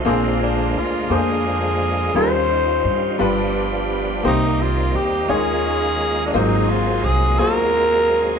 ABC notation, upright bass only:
X:1
M:6/8
L:1/8
Q:3/8=57
K:Ab
V:1 name="Upright bass" clef=bass
B,,,2 =D,, F,,3 | E,,2 G,, G,,,3 | C,,2 E,, E,,3 | A,,,2 C,, E,,3 |]